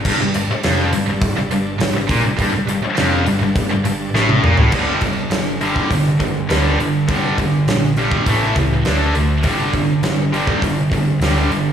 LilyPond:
<<
  \new Staff \with { instrumentName = "Tonewheel organ" } { \time 4/4 \key g \dorian \tempo 4 = 102 <g d' a'>1~ | <g d' a'>1 | r1 | r1 |
r1 | }
  \new Staff \with { instrumentName = "Distorted electric guitar" } { \clef bass \time 4/4 \key g \dorian g,16 g,16 g,16 r16 f,8 g,16 g,8 g,16 g,8 g,16 g,16 bes,16 g,16 | g,16 g,16 g,16 r16 f,8 g,16 g,8 g,16 g,8 a,8 bes,16 a,16 | <g, d g>8 <g, d>8 <g, d>8 <g, d g>8 <g, d>8 <g, d>8 <g, d g>8 <g, d>8 | <g, d g>8 <g, d>8 <g, d>8 <g, d g>8 <a, e a>8 <a, e>8 <d a d'>8 <d a>8 |
<g, d g>8 <g, d>8 <g, d>8 <g, d g>8 <g, d>8 <g, d>8 <g, d g>8 <g, d>8 | }
  \new Staff \with { instrumentName = "Distorted electric guitar" } { \clef bass \time 4/4 \key g \dorian g,16 g,16 g,16 r16 f,8 g,16 g,8 g,16 g,8 g,16 g,16 bes,16 g,16 | g,16 g,16 g,16 r16 f,8 g,16 g,8 g,16 g,8 a,8 bes,16 a,16 | <g, d g>8 <g, d>8 <g, d>8 <g, d g>8 <g, d>8 <g, d>8 <g, d g>8 <g, d>8 | <g, d g>8 <g, d>8 <g, d>8 <g, d g>8 <a, e a>8 <a, e>8 <d a d'>8 <d a>8 |
<g, d g>8 <g, d>8 <g, d>8 <g, d g>8 <g, d>8 <g, d>8 <g, d g>8 <g, d>8 | }
  \new Staff \with { instrumentName = "Picked electric bass" } { \clef bass \time 4/4 \key g \dorian g,,16 g,,16 g,,16 r16 f,,8 g,,16 g,,8 g,,16 g,,8 g,,16 g,,16 bes,,16 g,,16 | g,,16 g,,16 g,,16 r16 f,,8 g,,16 g,,8 g,,16 g,,8 a,,8 bes,,16 a,,16 | g,,8 g,,8 g,,4 g,,8 g,,8 d,8 g,,8 | g,,8 g,,8 bes,,4 a,,8 cis,8 d,8 d,8 |
g,,8 g,,8 g,,4 g,,8 g,,8 d,8 g,,8 | }
  \new DrumStaff \with { instrumentName = "Drums" } \drummode { \time 4/4 <cymc bd>8 hho8 <hho sn>8 hho8 <hho bd>8 hho8 <hho sn>8 <hho bd>8 | <hho bd>8 hho8 <hho sn>8 hho8 <hho bd>8 hho8 sn16 tommh16 toml16 tomfh16 | <cymc bd>8 <hho bd>8 <hho sn>8 hho16 bd16 <hho bd>8 <hho bd>8 <hho sn>8 hho8 | <hho bd>8 <hho bd>8 <hho sn>8 hho16 bd16 <hho bd>8 <hho bd>8 <hho sn>8 hho8 |
<hho bd>8 <hho bd>8 <hho sn>8 hho16 bd16 <hho bd>8 <hho bd>8 <hho sn>8 hho8 | }
>>